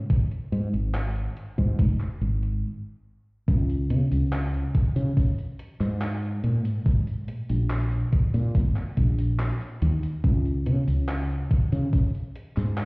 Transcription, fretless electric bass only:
0, 0, Header, 1, 2, 480
1, 0, Start_track
1, 0, Key_signature, -5, "major"
1, 0, Tempo, 845070
1, 57, Time_signature, 4, 2, 24, 8
1, 7299, End_track
2, 0, Start_track
2, 0, Title_t, "Fretless electric bass"
2, 0, Program_c, 0, 35
2, 296, Note_on_c, 0, 44, 87
2, 383, Note_off_c, 0, 44, 0
2, 417, Note_on_c, 0, 32, 79
2, 722, Note_off_c, 0, 32, 0
2, 898, Note_on_c, 0, 44, 96
2, 1017, Note_on_c, 0, 29, 85
2, 1025, Note_off_c, 0, 44, 0
2, 1103, Note_off_c, 0, 29, 0
2, 1256, Note_on_c, 0, 32, 78
2, 1497, Note_off_c, 0, 32, 0
2, 1977, Note_on_c, 0, 37, 99
2, 2217, Note_on_c, 0, 49, 86
2, 2225, Note_off_c, 0, 37, 0
2, 2303, Note_off_c, 0, 49, 0
2, 2338, Note_on_c, 0, 37, 78
2, 2642, Note_off_c, 0, 37, 0
2, 2817, Note_on_c, 0, 49, 95
2, 2903, Note_off_c, 0, 49, 0
2, 3296, Note_on_c, 0, 44, 98
2, 3601, Note_off_c, 0, 44, 0
2, 3656, Note_on_c, 0, 46, 81
2, 3777, Note_off_c, 0, 46, 0
2, 3777, Note_on_c, 0, 44, 83
2, 4137, Note_off_c, 0, 44, 0
2, 4137, Note_on_c, 0, 46, 90
2, 4223, Note_off_c, 0, 46, 0
2, 4258, Note_on_c, 0, 34, 80
2, 4562, Note_off_c, 0, 34, 0
2, 4738, Note_on_c, 0, 46, 97
2, 4856, Note_on_c, 0, 32, 90
2, 4864, Note_off_c, 0, 46, 0
2, 4942, Note_off_c, 0, 32, 0
2, 5096, Note_on_c, 0, 34, 80
2, 5402, Note_off_c, 0, 34, 0
2, 5577, Note_on_c, 0, 39, 98
2, 5663, Note_off_c, 0, 39, 0
2, 5816, Note_on_c, 0, 37, 99
2, 6057, Note_on_c, 0, 49, 90
2, 6066, Note_off_c, 0, 37, 0
2, 6143, Note_off_c, 0, 49, 0
2, 6178, Note_on_c, 0, 37, 80
2, 6482, Note_off_c, 0, 37, 0
2, 6659, Note_on_c, 0, 49, 102
2, 6743, Note_off_c, 0, 49, 0
2, 7140, Note_on_c, 0, 44, 102
2, 7299, Note_off_c, 0, 44, 0
2, 7299, End_track
0, 0, End_of_file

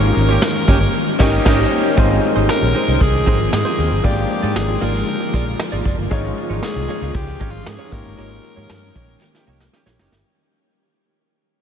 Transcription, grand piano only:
0, 0, Header, 1, 2, 480
1, 0, Start_track
1, 0, Tempo, 517241
1, 1833, Time_signature, 4, 2, 24, 8
1, 10782, End_track
2, 0, Start_track
2, 0, Title_t, "Grand piano"
2, 0, Program_c, 0, 0
2, 0, Control_c, 0, 64, 127
2, 0, Note_on_c, 0, 44, 67
2, 0, Note_on_c, 0, 61, 68
2, 0, Note_on_c, 0, 63, 62
2, 0, Note_on_c, 0, 67, 61
2, 0, Note_on_c, 0, 70, 66
2, 0, Note_on_c, 0, 75, 73
2, 357, Note_off_c, 0, 44, 0
2, 844, Note_off_c, 0, 61, 0
2, 847, Note_off_c, 0, 63, 0
2, 850, Note_off_c, 0, 67, 0
2, 852, Note_off_c, 0, 70, 0
2, 855, Note_off_c, 0, 75, 0
2, 1103, Note_on_c, 0, 61, 105
2, 1109, Note_on_c, 0, 63, 105
2, 1114, Note_on_c, 0, 67, 103
2, 1120, Note_on_c, 0, 70, 99
2, 1126, Note_on_c, 0, 75, 104
2, 1270, Note_off_c, 0, 61, 0
2, 1274, Note_off_c, 0, 63, 0
2, 1277, Note_off_c, 0, 67, 0
2, 1280, Note_off_c, 0, 70, 0
2, 1283, Note_off_c, 0, 75, 0
2, 1344, Note_on_c, 0, 61, 98
2, 1350, Note_on_c, 0, 63, 103
2, 1355, Note_on_c, 0, 67, 95
2, 1360, Note_on_c, 0, 70, 97
2, 1366, Note_on_c, 0, 75, 93
2, 1511, Note_off_c, 0, 61, 0
2, 1514, Note_off_c, 0, 63, 0
2, 1517, Note_off_c, 0, 67, 0
2, 1520, Note_off_c, 0, 70, 0
2, 1523, Note_off_c, 0, 75, 0
2, 1823, Note_on_c, 0, 60, 77
2, 1828, Note_on_c, 0, 63, 71
2, 1833, Note_on_c, 0, 65, 71
2, 1834, Note_on_c, 0, 44, 80
2, 1839, Note_on_c, 0, 68, 76
2, 1843, Control_c, 0, 64, 0
2, 1845, Note_on_c, 0, 75, 87
2, 1995, Control_c, 0, 64, 127
2, 2516, Note_off_c, 0, 44, 0
2, 3711, Note_off_c, 0, 60, 0
2, 3713, Note_off_c, 0, 63, 0
2, 3716, Note_off_c, 0, 65, 0
2, 3719, Note_off_c, 0, 68, 0
2, 3722, Note_off_c, 0, 75, 0
2, 3742, Note_on_c, 0, 58, 69
2, 3748, Note_on_c, 0, 62, 64
2, 3753, Note_on_c, 0, 65, 62
2, 3754, Note_on_c, 0, 44, 68
2, 3758, Note_on_c, 0, 56, 61
2, 3764, Note_on_c, 0, 74, 70
2, 3765, Control_c, 0, 64, 0
2, 3950, Control_c, 0, 64, 127
2, 4436, Note_off_c, 0, 44, 0
2, 5630, Note_off_c, 0, 58, 0
2, 5633, Note_off_c, 0, 62, 0
2, 5636, Note_off_c, 0, 65, 0
2, 5638, Note_off_c, 0, 56, 0
2, 5641, Note_off_c, 0, 74, 0
2, 5661, Note_on_c, 0, 56, 82
2, 5667, Note_on_c, 0, 61, 72
2, 5672, Note_on_c, 0, 44, 76
2, 5672, Note_on_c, 0, 63, 73
2, 5678, Note_on_c, 0, 65, 75
2, 5683, Note_on_c, 0, 73, 85
2, 5687, Control_c, 0, 64, 0
2, 5864, Control_c, 0, 64, 127
2, 6355, Note_off_c, 0, 44, 0
2, 7313, Note_off_c, 0, 56, 0
2, 7316, Note_off_c, 0, 61, 0
2, 7319, Note_off_c, 0, 63, 0
2, 7322, Note_off_c, 0, 65, 0
2, 7324, Note_off_c, 0, 73, 0
2, 7343, Note_on_c, 0, 58, 64
2, 7348, Note_on_c, 0, 61, 60
2, 7354, Note_on_c, 0, 44, 63
2, 7354, Note_on_c, 0, 63, 60
2, 7359, Note_on_c, 0, 67, 57
2, 7364, Control_c, 0, 64, 0
2, 7365, Note_on_c, 0, 73, 69
2, 7535, Control_c, 0, 64, 127
2, 8036, Note_off_c, 0, 44, 0
2, 9231, Note_off_c, 0, 58, 0
2, 9233, Note_off_c, 0, 61, 0
2, 9236, Note_off_c, 0, 63, 0
2, 9239, Note_off_c, 0, 67, 0
2, 9242, Note_off_c, 0, 73, 0
2, 9525, Control_c, 0, 64, 0
2, 10782, End_track
0, 0, End_of_file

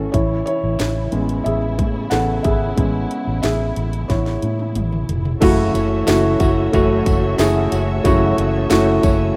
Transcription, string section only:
0, 0, Header, 1, 2, 480
1, 0, Start_track
1, 0, Key_signature, 3, "minor"
1, 0, Tempo, 658617
1, 102, Time_signature, 4, 2, 24, 8
1, 6824, End_track
2, 0, Start_track
2, 0, Title_t, "String section"
2, 0, Program_c, 0, 48
2, 0, Note_on_c, 0, 52, 59
2, 0, Note_on_c, 0, 61, 57
2, 0, Note_on_c, 0, 66, 65
2, 73, Note_off_c, 0, 61, 0
2, 73, Note_off_c, 0, 66, 0
2, 98, Note_on_c, 0, 64, 72
2, 99, Note_on_c, 0, 49, 67
2, 3915, Note_off_c, 0, 64, 0
2, 3916, Note_off_c, 0, 49, 0
2, 3917, Note_off_c, 0, 52, 0
2, 3946, Note_on_c, 0, 73, 65
2, 3946, Note_on_c, 0, 76, 68
2, 3947, Note_on_c, 0, 66, 76
2, 6824, Note_off_c, 0, 66, 0
2, 6824, Note_off_c, 0, 73, 0
2, 6824, Note_off_c, 0, 76, 0
2, 6824, End_track
0, 0, End_of_file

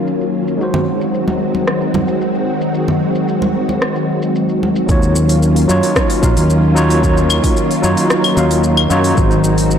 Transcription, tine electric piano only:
0, 0, Header, 1, 2, 480
1, 0, Start_track
1, 0, Tempo, 535714
1, 543, Time_signature, 4, 2, 24, 8
1, 8768, End_track
2, 0, Start_track
2, 0, Title_t, "Tine electric piano"
2, 0, Program_c, 0, 4
2, 0, Control_c, 0, 64, 127
2, 0, Note_on_c, 0, 54, 59
2, 0, Note_on_c, 0, 63, 57
2, 0, Note_on_c, 0, 65, 58
2, 0, Note_on_c, 0, 73, 69
2, 501, Note_off_c, 0, 54, 0
2, 510, Note_off_c, 0, 63, 0
2, 514, Note_on_c, 0, 56, 64
2, 519, Note_off_c, 0, 65, 0
2, 527, Note_off_c, 0, 73, 0
2, 532, Note_on_c, 0, 63, 56
2, 549, Note_on_c, 0, 66, 59
2, 554, Control_c, 0, 64, 0
2, 565, Note_on_c, 0, 72, 67
2, 737, Control_c, 0, 64, 127
2, 4340, Note_off_c, 0, 56, 0
2, 4349, Note_off_c, 0, 63, 0
2, 4355, Note_on_c, 0, 54, 71
2, 4358, Note_off_c, 0, 66, 0
2, 4365, Note_off_c, 0, 72, 0
2, 4370, Note_on_c, 0, 63, 59
2, 4387, Note_on_c, 0, 65, 62
2, 4392, Control_c, 0, 64, 0
2, 4403, Note_on_c, 0, 73, 81
2, 4564, Control_c, 0, 64, 127
2, 5061, Note_off_c, 0, 54, 0
2, 5068, Note_off_c, 0, 63, 0
2, 5077, Note_off_c, 0, 65, 0
2, 5085, Note_off_c, 0, 73, 0
2, 5087, Note_on_c, 0, 54, 96
2, 5095, Note_on_c, 0, 63, 86
2, 5102, Note_on_c, 0, 65, 86
2, 5113, Note_on_c, 0, 73, 106
2, 5546, Note_off_c, 0, 54, 0
2, 5551, Note_off_c, 0, 63, 0
2, 5554, Note_off_c, 0, 65, 0
2, 5560, Note_off_c, 0, 73, 0
2, 5568, Note_on_c, 0, 54, 74
2, 5576, Note_on_c, 0, 63, 70
2, 5585, Note_on_c, 0, 65, 68
2, 5594, Note_on_c, 0, 77, 83
2, 6027, Note_off_c, 0, 54, 0
2, 6031, Note_off_c, 0, 63, 0
2, 6036, Note_off_c, 0, 65, 0
2, 6040, Note_off_c, 0, 77, 0
2, 6048, Note_on_c, 0, 54, 100
2, 6056, Note_on_c, 0, 63, 92
2, 6065, Note_on_c, 0, 65, 86
2, 6074, Note_on_c, 0, 73, 110
2, 6262, Note_off_c, 0, 54, 0
2, 6271, Note_off_c, 0, 63, 0
2, 6273, Note_on_c, 0, 54, 68
2, 6276, Note_off_c, 0, 65, 0
2, 6280, Note_off_c, 0, 73, 0
2, 6291, Note_on_c, 0, 63, 66
2, 6308, Note_on_c, 0, 65, 62
2, 6326, Note_on_c, 0, 73, 71
2, 6979, Note_off_c, 0, 54, 0
2, 6989, Note_off_c, 0, 63, 0
2, 6997, Note_off_c, 0, 65, 0
2, 7006, Note_off_c, 0, 73, 0
2, 7006, Note_on_c, 0, 54, 94
2, 7014, Note_on_c, 0, 63, 92
2, 7023, Note_on_c, 0, 65, 85
2, 7031, Note_on_c, 0, 73, 106
2, 7466, Note_off_c, 0, 54, 0
2, 7470, Note_off_c, 0, 63, 0
2, 7474, Note_off_c, 0, 65, 0
2, 7479, Note_off_c, 0, 73, 0
2, 7484, Note_on_c, 0, 54, 81
2, 7494, Note_on_c, 0, 63, 72
2, 7503, Note_on_c, 0, 65, 70
2, 7511, Note_on_c, 0, 77, 84
2, 7945, Note_off_c, 0, 54, 0
2, 7950, Note_off_c, 0, 63, 0
2, 7955, Note_off_c, 0, 65, 0
2, 7959, Note_off_c, 0, 77, 0
2, 7967, Note_on_c, 0, 54, 101
2, 7974, Note_on_c, 0, 63, 89
2, 7983, Note_on_c, 0, 65, 92
2, 7991, Note_on_c, 0, 73, 106
2, 8187, Note_off_c, 0, 54, 0
2, 8190, Note_off_c, 0, 63, 0
2, 8194, Note_on_c, 0, 56, 72
2, 8195, Note_off_c, 0, 65, 0
2, 8199, Note_off_c, 0, 73, 0
2, 8210, Note_on_c, 0, 63, 67
2, 8227, Note_on_c, 0, 66, 67
2, 8234, Control_c, 0, 64, 0
2, 8243, Note_on_c, 0, 72, 77
2, 8402, Control_c, 0, 64, 127
2, 8768, Note_off_c, 0, 56, 0
2, 8768, Note_off_c, 0, 63, 0
2, 8768, Note_off_c, 0, 66, 0
2, 8768, Note_off_c, 0, 72, 0
2, 8768, End_track
0, 0, End_of_file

